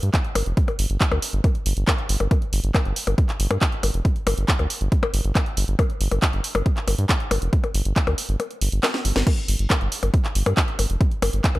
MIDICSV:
0, 0, Header, 1, 4, 480
1, 0, Start_track
1, 0, Tempo, 434783
1, 631, Time_signature, 4, 2, 24, 8
1, 12798, End_track
2, 0, Start_track
2, 0, Title_t, "Analog synth bass"
2, 0, Program_c, 0, 38
2, 31, Note_on_c, 0, 43, 82
2, 111, Note_off_c, 0, 43, 0
2, 391, Note_on_c, 0, 31, 97
2, 471, Note_off_c, 0, 31, 0
2, 511, Note_on_c, 0, 29, 86
2, 591, Note_off_c, 0, 29, 0
2, 871, Note_on_c, 0, 31, 93
2, 951, Note_off_c, 0, 31, 0
2, 992, Note_on_c, 0, 31, 80
2, 1071, Note_off_c, 0, 31, 0
2, 1231, Note_on_c, 0, 38, 73
2, 1311, Note_off_c, 0, 38, 0
2, 1471, Note_on_c, 0, 31, 82
2, 1551, Note_off_c, 0, 31, 0
2, 1831, Note_on_c, 0, 31, 96
2, 1911, Note_off_c, 0, 31, 0
2, 1951, Note_on_c, 0, 31, 79
2, 2031, Note_off_c, 0, 31, 0
2, 2311, Note_on_c, 0, 31, 94
2, 2391, Note_off_c, 0, 31, 0
2, 2431, Note_on_c, 0, 31, 82
2, 2511, Note_off_c, 0, 31, 0
2, 2791, Note_on_c, 0, 31, 96
2, 2871, Note_off_c, 0, 31, 0
2, 2911, Note_on_c, 0, 31, 84
2, 2991, Note_off_c, 0, 31, 0
2, 3151, Note_on_c, 0, 31, 75
2, 3231, Note_off_c, 0, 31, 0
2, 3391, Note_on_c, 0, 31, 83
2, 3471, Note_off_c, 0, 31, 0
2, 3751, Note_on_c, 0, 31, 96
2, 3831, Note_off_c, 0, 31, 0
2, 3871, Note_on_c, 0, 43, 80
2, 3951, Note_off_c, 0, 43, 0
2, 4231, Note_on_c, 0, 31, 98
2, 4311, Note_off_c, 0, 31, 0
2, 4351, Note_on_c, 0, 29, 84
2, 4431, Note_off_c, 0, 29, 0
2, 4711, Note_on_c, 0, 31, 94
2, 4791, Note_off_c, 0, 31, 0
2, 4831, Note_on_c, 0, 31, 81
2, 4911, Note_off_c, 0, 31, 0
2, 5071, Note_on_c, 0, 38, 74
2, 5151, Note_off_c, 0, 38, 0
2, 5311, Note_on_c, 0, 31, 80
2, 5391, Note_off_c, 0, 31, 0
2, 5671, Note_on_c, 0, 31, 95
2, 5751, Note_off_c, 0, 31, 0
2, 5791, Note_on_c, 0, 31, 85
2, 5871, Note_off_c, 0, 31, 0
2, 6151, Note_on_c, 0, 31, 95
2, 6231, Note_off_c, 0, 31, 0
2, 6271, Note_on_c, 0, 31, 83
2, 6351, Note_off_c, 0, 31, 0
2, 6631, Note_on_c, 0, 31, 91
2, 6711, Note_off_c, 0, 31, 0
2, 6751, Note_on_c, 0, 31, 82
2, 6831, Note_off_c, 0, 31, 0
2, 6991, Note_on_c, 0, 31, 72
2, 7071, Note_off_c, 0, 31, 0
2, 7231, Note_on_c, 0, 31, 87
2, 7311, Note_off_c, 0, 31, 0
2, 7591, Note_on_c, 0, 31, 98
2, 7671, Note_off_c, 0, 31, 0
2, 7711, Note_on_c, 0, 43, 82
2, 7791, Note_off_c, 0, 43, 0
2, 8070, Note_on_c, 0, 31, 95
2, 8151, Note_off_c, 0, 31, 0
2, 8191, Note_on_c, 0, 29, 83
2, 8271, Note_off_c, 0, 29, 0
2, 8550, Note_on_c, 0, 31, 94
2, 8631, Note_off_c, 0, 31, 0
2, 8671, Note_on_c, 0, 31, 84
2, 8751, Note_off_c, 0, 31, 0
2, 8911, Note_on_c, 0, 38, 70
2, 8991, Note_off_c, 0, 38, 0
2, 9151, Note_on_c, 0, 31, 84
2, 9231, Note_off_c, 0, 31, 0
2, 9511, Note_on_c, 0, 31, 97
2, 9591, Note_off_c, 0, 31, 0
2, 9631, Note_on_c, 0, 31, 80
2, 9711, Note_off_c, 0, 31, 0
2, 9991, Note_on_c, 0, 31, 96
2, 10071, Note_off_c, 0, 31, 0
2, 10111, Note_on_c, 0, 31, 84
2, 10191, Note_off_c, 0, 31, 0
2, 10471, Note_on_c, 0, 31, 96
2, 10551, Note_off_c, 0, 31, 0
2, 10591, Note_on_c, 0, 31, 81
2, 10671, Note_off_c, 0, 31, 0
2, 10831, Note_on_c, 0, 31, 72
2, 10911, Note_off_c, 0, 31, 0
2, 11071, Note_on_c, 0, 31, 83
2, 11151, Note_off_c, 0, 31, 0
2, 11431, Note_on_c, 0, 31, 97
2, 11511, Note_off_c, 0, 31, 0
2, 11551, Note_on_c, 0, 43, 84
2, 11631, Note_off_c, 0, 43, 0
2, 11911, Note_on_c, 0, 31, 96
2, 11991, Note_off_c, 0, 31, 0
2, 12031, Note_on_c, 0, 29, 84
2, 12111, Note_off_c, 0, 29, 0
2, 12391, Note_on_c, 0, 31, 92
2, 12471, Note_off_c, 0, 31, 0
2, 12511, Note_on_c, 0, 31, 83
2, 12591, Note_off_c, 0, 31, 0
2, 12751, Note_on_c, 0, 38, 73
2, 12798, Note_off_c, 0, 38, 0
2, 12798, End_track
3, 0, Start_track
3, 0, Title_t, "Percussion blips"
3, 391, Note_on_c, 9, 60, 75
3, 501, Note_off_c, 9, 60, 0
3, 751, Note_on_c, 9, 60, 40
3, 861, Note_off_c, 9, 60, 0
3, 1231, Note_on_c, 9, 60, 81
3, 1342, Note_off_c, 9, 60, 0
3, 1591, Note_on_c, 9, 60, 37
3, 1701, Note_off_c, 9, 60, 0
3, 2071, Note_on_c, 9, 60, 87
3, 2181, Note_off_c, 9, 60, 0
3, 2431, Note_on_c, 9, 60, 40
3, 2541, Note_off_c, 9, 60, 0
3, 2551, Note_on_c, 9, 60, 41
3, 2661, Note_off_c, 9, 60, 0
3, 3031, Note_on_c, 9, 60, 82
3, 3141, Note_off_c, 9, 60, 0
3, 3391, Note_on_c, 9, 60, 39
3, 3501, Note_off_c, 9, 60, 0
3, 3871, Note_on_c, 9, 60, 82
3, 3981, Note_off_c, 9, 60, 0
3, 4231, Note_on_c, 9, 60, 42
3, 4341, Note_off_c, 9, 60, 0
3, 4711, Note_on_c, 9, 60, 85
3, 4821, Note_off_c, 9, 60, 0
3, 5071, Note_on_c, 9, 60, 40
3, 5181, Note_off_c, 9, 60, 0
3, 5551, Note_on_c, 9, 60, 88
3, 5661, Note_off_c, 9, 60, 0
3, 5911, Note_on_c, 9, 60, 44
3, 6021, Note_off_c, 9, 60, 0
3, 6391, Note_on_c, 9, 60, 79
3, 6501, Note_off_c, 9, 60, 0
3, 6751, Note_on_c, 9, 60, 41
3, 6861, Note_off_c, 9, 60, 0
3, 7231, Note_on_c, 9, 60, 80
3, 7341, Note_off_c, 9, 60, 0
3, 7591, Note_on_c, 9, 60, 42
3, 7701, Note_off_c, 9, 60, 0
3, 8071, Note_on_c, 9, 60, 80
3, 8181, Note_off_c, 9, 60, 0
3, 8431, Note_on_c, 9, 60, 39
3, 8541, Note_off_c, 9, 60, 0
3, 8910, Note_on_c, 9, 60, 78
3, 9021, Note_off_c, 9, 60, 0
3, 9271, Note_on_c, 9, 60, 37
3, 9381, Note_off_c, 9, 60, 0
3, 9751, Note_on_c, 9, 60, 82
3, 9861, Note_off_c, 9, 60, 0
3, 10111, Note_on_c, 9, 60, 38
3, 10221, Note_off_c, 9, 60, 0
3, 10231, Note_on_c, 9, 60, 38
3, 10341, Note_off_c, 9, 60, 0
3, 10711, Note_on_c, 9, 60, 76
3, 10821, Note_off_c, 9, 60, 0
3, 11071, Note_on_c, 9, 60, 37
3, 11181, Note_off_c, 9, 60, 0
3, 11551, Note_on_c, 9, 60, 76
3, 11661, Note_off_c, 9, 60, 0
3, 11911, Note_on_c, 9, 60, 38
3, 12021, Note_off_c, 9, 60, 0
3, 12391, Note_on_c, 9, 60, 77
3, 12501, Note_off_c, 9, 60, 0
3, 12751, Note_on_c, 9, 60, 36
3, 12798, Note_off_c, 9, 60, 0
3, 12798, End_track
4, 0, Start_track
4, 0, Title_t, "Drums"
4, 31, Note_on_c, 9, 42, 53
4, 141, Note_off_c, 9, 42, 0
4, 151, Note_on_c, 9, 36, 126
4, 151, Note_on_c, 9, 39, 127
4, 151, Note_on_c, 9, 42, 53
4, 261, Note_off_c, 9, 36, 0
4, 261, Note_off_c, 9, 39, 0
4, 261, Note_off_c, 9, 42, 0
4, 271, Note_on_c, 9, 42, 25
4, 381, Note_off_c, 9, 42, 0
4, 391, Note_on_c, 9, 46, 97
4, 501, Note_off_c, 9, 46, 0
4, 631, Note_on_c, 9, 36, 127
4, 631, Note_on_c, 9, 42, 50
4, 741, Note_off_c, 9, 36, 0
4, 741, Note_off_c, 9, 42, 0
4, 751, Note_on_c, 9, 42, 24
4, 861, Note_off_c, 9, 42, 0
4, 871, Note_on_c, 9, 46, 112
4, 981, Note_off_c, 9, 46, 0
4, 991, Note_on_c, 9, 42, 49
4, 1101, Note_off_c, 9, 42, 0
4, 1111, Note_on_c, 9, 36, 121
4, 1111, Note_on_c, 9, 39, 117
4, 1111, Note_on_c, 9, 42, 51
4, 1221, Note_off_c, 9, 36, 0
4, 1221, Note_off_c, 9, 39, 0
4, 1221, Note_off_c, 9, 42, 0
4, 1231, Note_on_c, 9, 42, 24
4, 1342, Note_off_c, 9, 42, 0
4, 1351, Note_on_c, 9, 46, 100
4, 1462, Note_off_c, 9, 46, 0
4, 1471, Note_on_c, 9, 42, 48
4, 1582, Note_off_c, 9, 42, 0
4, 1591, Note_on_c, 9, 36, 122
4, 1591, Note_on_c, 9, 42, 47
4, 1701, Note_off_c, 9, 36, 0
4, 1701, Note_off_c, 9, 42, 0
4, 1711, Note_on_c, 9, 42, 27
4, 1821, Note_off_c, 9, 42, 0
4, 1831, Note_on_c, 9, 46, 116
4, 1941, Note_off_c, 9, 46, 0
4, 1951, Note_on_c, 9, 42, 49
4, 2061, Note_off_c, 9, 42, 0
4, 2071, Note_on_c, 9, 36, 122
4, 2071, Note_on_c, 9, 39, 121
4, 2071, Note_on_c, 9, 42, 50
4, 2181, Note_off_c, 9, 36, 0
4, 2181, Note_off_c, 9, 39, 0
4, 2181, Note_off_c, 9, 42, 0
4, 2191, Note_on_c, 9, 42, 24
4, 2301, Note_off_c, 9, 42, 0
4, 2311, Note_on_c, 9, 46, 96
4, 2421, Note_off_c, 9, 46, 0
4, 2431, Note_on_c, 9, 42, 50
4, 2541, Note_off_c, 9, 42, 0
4, 2551, Note_on_c, 9, 36, 122
4, 2551, Note_on_c, 9, 42, 50
4, 2661, Note_off_c, 9, 36, 0
4, 2661, Note_off_c, 9, 42, 0
4, 2671, Note_on_c, 9, 42, 24
4, 2781, Note_off_c, 9, 42, 0
4, 2791, Note_on_c, 9, 46, 104
4, 2901, Note_off_c, 9, 46, 0
4, 2911, Note_on_c, 9, 42, 50
4, 3021, Note_off_c, 9, 42, 0
4, 3031, Note_on_c, 9, 36, 122
4, 3031, Note_on_c, 9, 39, 110
4, 3031, Note_on_c, 9, 42, 51
4, 3141, Note_off_c, 9, 36, 0
4, 3141, Note_off_c, 9, 39, 0
4, 3141, Note_off_c, 9, 42, 0
4, 3151, Note_on_c, 9, 42, 24
4, 3261, Note_off_c, 9, 42, 0
4, 3271, Note_on_c, 9, 46, 94
4, 3381, Note_off_c, 9, 46, 0
4, 3391, Note_on_c, 9, 42, 50
4, 3501, Note_off_c, 9, 42, 0
4, 3511, Note_on_c, 9, 36, 114
4, 3511, Note_on_c, 9, 42, 47
4, 3621, Note_off_c, 9, 36, 0
4, 3621, Note_off_c, 9, 42, 0
4, 3631, Note_on_c, 9, 39, 36
4, 3631, Note_on_c, 9, 42, 27
4, 3741, Note_off_c, 9, 39, 0
4, 3741, Note_off_c, 9, 42, 0
4, 3751, Note_on_c, 9, 46, 113
4, 3861, Note_off_c, 9, 46, 0
4, 3871, Note_on_c, 9, 42, 52
4, 3981, Note_off_c, 9, 42, 0
4, 3991, Note_on_c, 9, 36, 124
4, 3991, Note_on_c, 9, 39, 117
4, 3991, Note_on_c, 9, 42, 51
4, 4101, Note_off_c, 9, 36, 0
4, 4101, Note_off_c, 9, 39, 0
4, 4101, Note_off_c, 9, 42, 0
4, 4111, Note_on_c, 9, 42, 25
4, 4221, Note_off_c, 9, 42, 0
4, 4231, Note_on_c, 9, 46, 91
4, 4341, Note_off_c, 9, 46, 0
4, 4351, Note_on_c, 9, 42, 49
4, 4461, Note_off_c, 9, 42, 0
4, 4471, Note_on_c, 9, 36, 116
4, 4471, Note_on_c, 9, 42, 53
4, 4581, Note_off_c, 9, 36, 0
4, 4581, Note_off_c, 9, 42, 0
4, 4591, Note_on_c, 9, 42, 26
4, 4701, Note_off_c, 9, 42, 0
4, 4711, Note_on_c, 9, 46, 103
4, 4821, Note_off_c, 9, 46, 0
4, 4831, Note_on_c, 9, 42, 51
4, 4941, Note_off_c, 9, 42, 0
4, 4951, Note_on_c, 9, 36, 117
4, 4951, Note_on_c, 9, 39, 112
4, 4951, Note_on_c, 9, 42, 52
4, 5061, Note_off_c, 9, 36, 0
4, 5061, Note_off_c, 9, 39, 0
4, 5061, Note_off_c, 9, 42, 0
4, 5071, Note_on_c, 9, 42, 26
4, 5181, Note_off_c, 9, 42, 0
4, 5190, Note_on_c, 9, 46, 90
4, 5301, Note_off_c, 9, 46, 0
4, 5311, Note_on_c, 9, 42, 51
4, 5421, Note_off_c, 9, 42, 0
4, 5431, Note_on_c, 9, 36, 111
4, 5431, Note_on_c, 9, 42, 49
4, 5541, Note_off_c, 9, 36, 0
4, 5541, Note_off_c, 9, 42, 0
4, 5551, Note_on_c, 9, 42, 28
4, 5661, Note_off_c, 9, 42, 0
4, 5671, Note_on_c, 9, 46, 104
4, 5781, Note_off_c, 9, 46, 0
4, 5791, Note_on_c, 9, 42, 53
4, 5901, Note_off_c, 9, 42, 0
4, 5911, Note_on_c, 9, 36, 116
4, 5911, Note_on_c, 9, 39, 121
4, 5911, Note_on_c, 9, 42, 56
4, 6021, Note_off_c, 9, 36, 0
4, 6021, Note_off_c, 9, 39, 0
4, 6021, Note_off_c, 9, 42, 0
4, 6031, Note_on_c, 9, 42, 25
4, 6141, Note_off_c, 9, 42, 0
4, 6151, Note_on_c, 9, 46, 90
4, 6261, Note_off_c, 9, 46, 0
4, 6271, Note_on_c, 9, 42, 51
4, 6381, Note_off_c, 9, 42, 0
4, 6391, Note_on_c, 9, 36, 113
4, 6391, Note_on_c, 9, 42, 55
4, 6501, Note_off_c, 9, 36, 0
4, 6501, Note_off_c, 9, 42, 0
4, 6511, Note_on_c, 9, 42, 26
4, 6621, Note_off_c, 9, 42, 0
4, 6631, Note_on_c, 9, 46, 99
4, 6741, Note_off_c, 9, 46, 0
4, 6751, Note_on_c, 9, 42, 55
4, 6861, Note_off_c, 9, 42, 0
4, 6871, Note_on_c, 9, 36, 115
4, 6871, Note_on_c, 9, 39, 116
4, 6871, Note_on_c, 9, 42, 55
4, 6981, Note_off_c, 9, 36, 0
4, 6981, Note_off_c, 9, 39, 0
4, 6981, Note_off_c, 9, 42, 0
4, 6991, Note_on_c, 9, 42, 27
4, 7101, Note_off_c, 9, 42, 0
4, 7111, Note_on_c, 9, 46, 87
4, 7221, Note_off_c, 9, 46, 0
4, 7351, Note_on_c, 9, 36, 113
4, 7351, Note_on_c, 9, 42, 50
4, 7461, Note_off_c, 9, 36, 0
4, 7461, Note_off_c, 9, 42, 0
4, 7471, Note_on_c, 9, 39, 39
4, 7471, Note_on_c, 9, 42, 28
4, 7581, Note_off_c, 9, 39, 0
4, 7581, Note_off_c, 9, 42, 0
4, 7591, Note_on_c, 9, 46, 107
4, 7701, Note_off_c, 9, 46, 0
4, 7711, Note_on_c, 9, 42, 55
4, 7821, Note_off_c, 9, 42, 0
4, 7831, Note_on_c, 9, 36, 117
4, 7831, Note_on_c, 9, 39, 120
4, 7831, Note_on_c, 9, 42, 56
4, 7941, Note_off_c, 9, 36, 0
4, 7941, Note_off_c, 9, 39, 0
4, 7941, Note_off_c, 9, 42, 0
4, 7951, Note_on_c, 9, 42, 27
4, 8061, Note_off_c, 9, 42, 0
4, 8071, Note_on_c, 9, 46, 83
4, 8181, Note_off_c, 9, 46, 0
4, 8191, Note_on_c, 9, 42, 55
4, 8301, Note_off_c, 9, 42, 0
4, 8311, Note_on_c, 9, 36, 116
4, 8311, Note_on_c, 9, 42, 54
4, 8421, Note_off_c, 9, 36, 0
4, 8421, Note_off_c, 9, 42, 0
4, 8431, Note_on_c, 9, 42, 27
4, 8541, Note_off_c, 9, 42, 0
4, 8551, Note_on_c, 9, 46, 104
4, 8661, Note_off_c, 9, 46, 0
4, 8671, Note_on_c, 9, 42, 58
4, 8781, Note_off_c, 9, 42, 0
4, 8791, Note_on_c, 9, 36, 114
4, 8791, Note_on_c, 9, 39, 120
4, 8791, Note_on_c, 9, 42, 55
4, 8901, Note_off_c, 9, 36, 0
4, 8901, Note_off_c, 9, 39, 0
4, 8901, Note_off_c, 9, 42, 0
4, 8910, Note_on_c, 9, 42, 26
4, 9021, Note_off_c, 9, 42, 0
4, 9030, Note_on_c, 9, 46, 90
4, 9141, Note_off_c, 9, 46, 0
4, 9271, Note_on_c, 9, 42, 51
4, 9381, Note_off_c, 9, 42, 0
4, 9391, Note_on_c, 9, 42, 29
4, 9501, Note_off_c, 9, 42, 0
4, 9511, Note_on_c, 9, 46, 107
4, 9621, Note_off_c, 9, 46, 0
4, 9631, Note_on_c, 9, 42, 56
4, 9741, Note_off_c, 9, 42, 0
4, 9751, Note_on_c, 9, 38, 63
4, 9751, Note_on_c, 9, 39, 125
4, 9751, Note_on_c, 9, 42, 58
4, 9861, Note_off_c, 9, 38, 0
4, 9861, Note_off_c, 9, 39, 0
4, 9861, Note_off_c, 9, 42, 0
4, 9871, Note_on_c, 9, 38, 61
4, 9871, Note_on_c, 9, 42, 28
4, 9981, Note_off_c, 9, 38, 0
4, 9981, Note_off_c, 9, 42, 0
4, 9991, Note_on_c, 9, 46, 85
4, 10101, Note_off_c, 9, 46, 0
4, 10111, Note_on_c, 9, 38, 80
4, 10111, Note_on_c, 9, 42, 55
4, 10221, Note_off_c, 9, 38, 0
4, 10221, Note_off_c, 9, 42, 0
4, 10231, Note_on_c, 9, 36, 118
4, 10231, Note_on_c, 9, 42, 56
4, 10231, Note_on_c, 9, 49, 75
4, 10341, Note_off_c, 9, 36, 0
4, 10341, Note_off_c, 9, 42, 0
4, 10341, Note_off_c, 9, 49, 0
4, 10351, Note_on_c, 9, 42, 28
4, 10461, Note_off_c, 9, 42, 0
4, 10471, Note_on_c, 9, 46, 107
4, 10581, Note_off_c, 9, 46, 0
4, 10591, Note_on_c, 9, 42, 54
4, 10701, Note_off_c, 9, 42, 0
4, 10711, Note_on_c, 9, 36, 115
4, 10711, Note_on_c, 9, 39, 127
4, 10711, Note_on_c, 9, 42, 56
4, 10821, Note_off_c, 9, 36, 0
4, 10821, Note_off_c, 9, 39, 0
4, 10821, Note_off_c, 9, 42, 0
4, 10831, Note_on_c, 9, 42, 26
4, 10941, Note_off_c, 9, 42, 0
4, 10951, Note_on_c, 9, 46, 93
4, 11061, Note_off_c, 9, 46, 0
4, 11071, Note_on_c, 9, 42, 55
4, 11181, Note_off_c, 9, 42, 0
4, 11191, Note_on_c, 9, 36, 117
4, 11191, Note_on_c, 9, 42, 52
4, 11301, Note_off_c, 9, 36, 0
4, 11301, Note_off_c, 9, 42, 0
4, 11311, Note_on_c, 9, 39, 39
4, 11311, Note_on_c, 9, 42, 28
4, 11421, Note_off_c, 9, 39, 0
4, 11421, Note_off_c, 9, 42, 0
4, 11431, Note_on_c, 9, 46, 106
4, 11541, Note_off_c, 9, 46, 0
4, 11551, Note_on_c, 9, 42, 56
4, 11661, Note_off_c, 9, 42, 0
4, 11671, Note_on_c, 9, 36, 125
4, 11671, Note_on_c, 9, 39, 127
4, 11671, Note_on_c, 9, 42, 57
4, 11781, Note_off_c, 9, 36, 0
4, 11781, Note_off_c, 9, 39, 0
4, 11781, Note_off_c, 9, 42, 0
4, 11791, Note_on_c, 9, 42, 27
4, 11901, Note_off_c, 9, 42, 0
4, 11911, Note_on_c, 9, 46, 90
4, 12021, Note_off_c, 9, 46, 0
4, 12030, Note_on_c, 9, 42, 56
4, 12141, Note_off_c, 9, 42, 0
4, 12151, Note_on_c, 9, 36, 127
4, 12151, Note_on_c, 9, 42, 55
4, 12261, Note_off_c, 9, 36, 0
4, 12261, Note_off_c, 9, 42, 0
4, 12271, Note_on_c, 9, 42, 27
4, 12381, Note_off_c, 9, 42, 0
4, 12391, Note_on_c, 9, 46, 113
4, 12501, Note_off_c, 9, 46, 0
4, 12511, Note_on_c, 9, 42, 55
4, 12621, Note_off_c, 9, 42, 0
4, 12631, Note_on_c, 9, 36, 122
4, 12631, Note_on_c, 9, 39, 126
4, 12631, Note_on_c, 9, 42, 56
4, 12741, Note_off_c, 9, 36, 0
4, 12741, Note_off_c, 9, 39, 0
4, 12741, Note_off_c, 9, 42, 0
4, 12751, Note_on_c, 9, 42, 26
4, 12798, Note_off_c, 9, 42, 0
4, 12798, End_track
0, 0, End_of_file